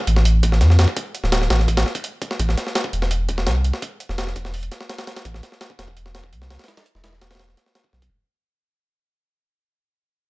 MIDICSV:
0, 0, Header, 1, 3, 480
1, 0, Start_track
1, 0, Tempo, 357143
1, 1298, Time_signature, 4, 2, 24, 8
1, 13841, End_track
2, 0, Start_track
2, 0, Title_t, "Sub bass"
2, 0, Program_c, 0, 38
2, 99, Note_on_c, 0, 33, 86
2, 819, Note_on_c, 0, 41, 79
2, 840, Note_off_c, 0, 33, 0
2, 1161, Note_off_c, 0, 41, 0
2, 1661, Note_on_c, 0, 26, 77
2, 2000, Note_off_c, 0, 26, 0
2, 2020, Note_on_c, 0, 33, 87
2, 2480, Note_off_c, 0, 33, 0
2, 3219, Note_on_c, 0, 33, 102
2, 3435, Note_off_c, 0, 33, 0
2, 3939, Note_on_c, 0, 28, 84
2, 4658, Note_on_c, 0, 36, 79
2, 4678, Note_off_c, 0, 28, 0
2, 5000, Note_off_c, 0, 36, 0
2, 5500, Note_on_c, 0, 28, 75
2, 5839, Note_off_c, 0, 28, 0
2, 5859, Note_on_c, 0, 28, 87
2, 6320, Note_off_c, 0, 28, 0
2, 7059, Note_on_c, 0, 33, 98
2, 7275, Note_off_c, 0, 33, 0
2, 7779, Note_on_c, 0, 28, 89
2, 8499, Note_on_c, 0, 36, 78
2, 8519, Note_off_c, 0, 28, 0
2, 8840, Note_off_c, 0, 36, 0
2, 9341, Note_on_c, 0, 28, 74
2, 9680, Note_off_c, 0, 28, 0
2, 9699, Note_on_c, 0, 28, 83
2, 10159, Note_off_c, 0, 28, 0
2, 10660, Note_on_c, 0, 35, 91
2, 10875, Note_off_c, 0, 35, 0
2, 13841, End_track
3, 0, Start_track
3, 0, Title_t, "Drums"
3, 98, Note_on_c, 9, 42, 66
3, 221, Note_on_c, 9, 38, 47
3, 233, Note_off_c, 9, 42, 0
3, 341, Note_on_c, 9, 42, 85
3, 355, Note_off_c, 9, 38, 0
3, 475, Note_off_c, 9, 42, 0
3, 579, Note_on_c, 9, 36, 100
3, 580, Note_on_c, 9, 42, 76
3, 702, Note_on_c, 9, 38, 35
3, 713, Note_off_c, 9, 36, 0
3, 714, Note_off_c, 9, 42, 0
3, 819, Note_off_c, 9, 38, 0
3, 819, Note_on_c, 9, 38, 37
3, 819, Note_on_c, 9, 42, 58
3, 943, Note_off_c, 9, 38, 0
3, 943, Note_on_c, 9, 38, 37
3, 953, Note_off_c, 9, 42, 0
3, 1059, Note_off_c, 9, 38, 0
3, 1059, Note_on_c, 9, 38, 105
3, 1059, Note_on_c, 9, 42, 76
3, 1180, Note_on_c, 9, 36, 84
3, 1194, Note_off_c, 9, 38, 0
3, 1194, Note_off_c, 9, 42, 0
3, 1298, Note_off_c, 9, 36, 0
3, 1298, Note_on_c, 9, 36, 104
3, 1298, Note_on_c, 9, 42, 82
3, 1432, Note_off_c, 9, 42, 0
3, 1433, Note_off_c, 9, 36, 0
3, 1540, Note_on_c, 9, 42, 62
3, 1661, Note_on_c, 9, 38, 36
3, 1674, Note_off_c, 9, 42, 0
3, 1777, Note_off_c, 9, 38, 0
3, 1777, Note_on_c, 9, 38, 109
3, 1777, Note_on_c, 9, 42, 86
3, 1903, Note_off_c, 9, 38, 0
3, 1903, Note_on_c, 9, 38, 40
3, 1911, Note_off_c, 9, 42, 0
3, 2020, Note_off_c, 9, 38, 0
3, 2020, Note_on_c, 9, 38, 101
3, 2020, Note_on_c, 9, 42, 72
3, 2142, Note_off_c, 9, 38, 0
3, 2142, Note_on_c, 9, 38, 34
3, 2154, Note_off_c, 9, 42, 0
3, 2259, Note_on_c, 9, 36, 82
3, 2260, Note_on_c, 9, 42, 60
3, 2277, Note_off_c, 9, 38, 0
3, 2382, Note_off_c, 9, 42, 0
3, 2382, Note_on_c, 9, 38, 98
3, 2382, Note_on_c, 9, 42, 74
3, 2394, Note_off_c, 9, 36, 0
3, 2503, Note_off_c, 9, 38, 0
3, 2503, Note_on_c, 9, 38, 36
3, 2517, Note_off_c, 9, 42, 0
3, 2621, Note_on_c, 9, 36, 79
3, 2622, Note_on_c, 9, 42, 56
3, 2637, Note_off_c, 9, 38, 0
3, 2741, Note_off_c, 9, 42, 0
3, 2741, Note_on_c, 9, 42, 77
3, 2755, Note_off_c, 9, 36, 0
3, 2875, Note_off_c, 9, 42, 0
3, 2979, Note_on_c, 9, 36, 86
3, 2980, Note_on_c, 9, 42, 58
3, 3102, Note_on_c, 9, 38, 48
3, 3113, Note_off_c, 9, 36, 0
3, 3114, Note_off_c, 9, 42, 0
3, 3219, Note_on_c, 9, 36, 98
3, 3220, Note_on_c, 9, 42, 83
3, 3237, Note_off_c, 9, 38, 0
3, 3344, Note_on_c, 9, 38, 36
3, 3353, Note_off_c, 9, 36, 0
3, 3354, Note_off_c, 9, 42, 0
3, 3461, Note_off_c, 9, 38, 0
3, 3461, Note_on_c, 9, 38, 39
3, 3461, Note_on_c, 9, 42, 62
3, 3583, Note_off_c, 9, 38, 0
3, 3583, Note_on_c, 9, 38, 37
3, 3596, Note_off_c, 9, 42, 0
3, 3701, Note_off_c, 9, 38, 0
3, 3701, Note_on_c, 9, 38, 111
3, 3701, Note_on_c, 9, 42, 81
3, 3820, Note_on_c, 9, 36, 92
3, 3836, Note_off_c, 9, 38, 0
3, 3836, Note_off_c, 9, 42, 0
3, 3940, Note_on_c, 9, 42, 62
3, 3955, Note_off_c, 9, 36, 0
3, 4061, Note_on_c, 9, 38, 49
3, 4075, Note_off_c, 9, 42, 0
3, 4178, Note_on_c, 9, 42, 84
3, 4195, Note_off_c, 9, 38, 0
3, 4312, Note_off_c, 9, 42, 0
3, 4416, Note_on_c, 9, 42, 63
3, 4418, Note_on_c, 9, 36, 92
3, 4541, Note_on_c, 9, 38, 51
3, 4551, Note_off_c, 9, 42, 0
3, 4552, Note_off_c, 9, 36, 0
3, 4658, Note_off_c, 9, 38, 0
3, 4658, Note_on_c, 9, 38, 106
3, 4658, Note_on_c, 9, 42, 79
3, 4793, Note_off_c, 9, 38, 0
3, 4793, Note_off_c, 9, 42, 0
3, 4899, Note_on_c, 9, 42, 66
3, 5020, Note_on_c, 9, 38, 51
3, 5033, Note_off_c, 9, 42, 0
3, 5139, Note_on_c, 9, 36, 101
3, 5139, Note_on_c, 9, 42, 79
3, 5154, Note_off_c, 9, 38, 0
3, 5273, Note_off_c, 9, 36, 0
3, 5273, Note_off_c, 9, 42, 0
3, 5379, Note_on_c, 9, 42, 62
3, 5501, Note_on_c, 9, 38, 34
3, 5513, Note_off_c, 9, 42, 0
3, 5620, Note_off_c, 9, 38, 0
3, 5620, Note_on_c, 9, 38, 110
3, 5620, Note_on_c, 9, 42, 80
3, 5739, Note_off_c, 9, 38, 0
3, 5739, Note_on_c, 9, 38, 40
3, 5754, Note_off_c, 9, 42, 0
3, 5858, Note_on_c, 9, 36, 87
3, 5858, Note_on_c, 9, 42, 63
3, 5874, Note_off_c, 9, 38, 0
3, 5980, Note_on_c, 9, 38, 36
3, 5992, Note_off_c, 9, 42, 0
3, 5993, Note_off_c, 9, 36, 0
3, 6098, Note_on_c, 9, 46, 77
3, 6114, Note_off_c, 9, 38, 0
3, 6220, Note_on_c, 9, 42, 40
3, 6233, Note_off_c, 9, 46, 0
3, 6338, Note_off_c, 9, 42, 0
3, 6338, Note_on_c, 9, 38, 39
3, 6338, Note_on_c, 9, 42, 64
3, 6458, Note_off_c, 9, 38, 0
3, 6458, Note_on_c, 9, 38, 51
3, 6472, Note_off_c, 9, 42, 0
3, 6578, Note_off_c, 9, 38, 0
3, 6578, Note_on_c, 9, 38, 99
3, 6578, Note_on_c, 9, 42, 72
3, 6699, Note_off_c, 9, 38, 0
3, 6699, Note_off_c, 9, 42, 0
3, 6699, Note_on_c, 9, 38, 103
3, 6699, Note_on_c, 9, 42, 74
3, 6818, Note_off_c, 9, 38, 0
3, 6818, Note_off_c, 9, 42, 0
3, 6818, Note_on_c, 9, 38, 100
3, 6818, Note_on_c, 9, 42, 77
3, 6941, Note_off_c, 9, 38, 0
3, 6941, Note_off_c, 9, 42, 0
3, 6941, Note_on_c, 9, 38, 95
3, 6941, Note_on_c, 9, 42, 76
3, 7058, Note_off_c, 9, 42, 0
3, 7058, Note_on_c, 9, 42, 78
3, 7059, Note_on_c, 9, 36, 101
3, 7076, Note_off_c, 9, 38, 0
3, 7182, Note_on_c, 9, 38, 38
3, 7192, Note_off_c, 9, 42, 0
3, 7193, Note_off_c, 9, 36, 0
3, 7300, Note_off_c, 9, 38, 0
3, 7300, Note_on_c, 9, 38, 38
3, 7300, Note_on_c, 9, 42, 62
3, 7420, Note_off_c, 9, 38, 0
3, 7420, Note_on_c, 9, 38, 36
3, 7435, Note_off_c, 9, 42, 0
3, 7538, Note_off_c, 9, 38, 0
3, 7538, Note_on_c, 9, 38, 108
3, 7538, Note_on_c, 9, 42, 81
3, 7661, Note_on_c, 9, 36, 91
3, 7673, Note_off_c, 9, 38, 0
3, 7673, Note_off_c, 9, 42, 0
3, 7781, Note_on_c, 9, 38, 96
3, 7781, Note_on_c, 9, 42, 74
3, 7795, Note_off_c, 9, 36, 0
3, 7901, Note_on_c, 9, 36, 79
3, 7915, Note_off_c, 9, 38, 0
3, 7915, Note_off_c, 9, 42, 0
3, 8019, Note_on_c, 9, 42, 57
3, 8035, Note_off_c, 9, 36, 0
3, 8141, Note_on_c, 9, 38, 43
3, 8154, Note_off_c, 9, 42, 0
3, 8261, Note_off_c, 9, 38, 0
3, 8261, Note_on_c, 9, 38, 100
3, 8261, Note_on_c, 9, 42, 71
3, 8382, Note_on_c, 9, 36, 80
3, 8396, Note_off_c, 9, 38, 0
3, 8396, Note_off_c, 9, 42, 0
3, 8503, Note_on_c, 9, 42, 58
3, 8516, Note_off_c, 9, 36, 0
3, 8624, Note_on_c, 9, 38, 42
3, 8637, Note_off_c, 9, 42, 0
3, 8742, Note_off_c, 9, 38, 0
3, 8742, Note_on_c, 9, 38, 99
3, 8742, Note_on_c, 9, 42, 76
3, 8862, Note_off_c, 9, 38, 0
3, 8862, Note_off_c, 9, 42, 0
3, 8862, Note_on_c, 9, 38, 80
3, 8862, Note_on_c, 9, 42, 63
3, 8922, Note_off_c, 9, 38, 0
3, 8922, Note_off_c, 9, 42, 0
3, 8922, Note_on_c, 9, 38, 80
3, 8922, Note_on_c, 9, 42, 60
3, 8981, Note_off_c, 9, 38, 0
3, 8981, Note_off_c, 9, 42, 0
3, 8981, Note_on_c, 9, 38, 93
3, 8981, Note_on_c, 9, 42, 71
3, 9103, Note_off_c, 9, 38, 0
3, 9103, Note_off_c, 9, 42, 0
3, 9103, Note_on_c, 9, 38, 92
3, 9103, Note_on_c, 9, 42, 70
3, 9218, Note_off_c, 9, 42, 0
3, 9218, Note_on_c, 9, 42, 63
3, 9237, Note_off_c, 9, 38, 0
3, 9341, Note_on_c, 9, 38, 33
3, 9353, Note_off_c, 9, 42, 0
3, 9458, Note_off_c, 9, 38, 0
3, 9458, Note_on_c, 9, 38, 106
3, 9458, Note_on_c, 9, 42, 83
3, 9579, Note_off_c, 9, 38, 0
3, 9579, Note_on_c, 9, 38, 38
3, 9592, Note_off_c, 9, 42, 0
3, 9697, Note_off_c, 9, 38, 0
3, 9697, Note_on_c, 9, 38, 96
3, 9697, Note_on_c, 9, 42, 73
3, 9820, Note_off_c, 9, 38, 0
3, 9820, Note_off_c, 9, 42, 0
3, 9820, Note_on_c, 9, 38, 80
3, 9820, Note_on_c, 9, 42, 61
3, 9878, Note_off_c, 9, 38, 0
3, 9878, Note_off_c, 9, 42, 0
3, 9878, Note_on_c, 9, 38, 81
3, 9878, Note_on_c, 9, 42, 61
3, 9939, Note_off_c, 9, 38, 0
3, 9939, Note_off_c, 9, 42, 0
3, 9939, Note_on_c, 9, 38, 100
3, 9939, Note_on_c, 9, 42, 72
3, 10061, Note_off_c, 9, 38, 0
3, 10061, Note_on_c, 9, 38, 34
3, 10073, Note_off_c, 9, 42, 0
3, 10178, Note_off_c, 9, 38, 0
3, 10178, Note_on_c, 9, 38, 35
3, 10178, Note_on_c, 9, 42, 55
3, 10300, Note_off_c, 9, 38, 0
3, 10300, Note_on_c, 9, 38, 34
3, 10313, Note_off_c, 9, 42, 0
3, 10419, Note_off_c, 9, 38, 0
3, 10419, Note_on_c, 9, 38, 92
3, 10419, Note_on_c, 9, 42, 69
3, 10540, Note_on_c, 9, 36, 80
3, 10553, Note_off_c, 9, 38, 0
3, 10553, Note_off_c, 9, 42, 0
3, 10658, Note_on_c, 9, 38, 33
3, 10675, Note_off_c, 9, 36, 0
3, 10781, Note_on_c, 9, 36, 76
3, 10781, Note_on_c, 9, 42, 58
3, 10792, Note_off_c, 9, 38, 0
3, 10915, Note_off_c, 9, 36, 0
3, 10915, Note_off_c, 9, 42, 0
3, 13841, End_track
0, 0, End_of_file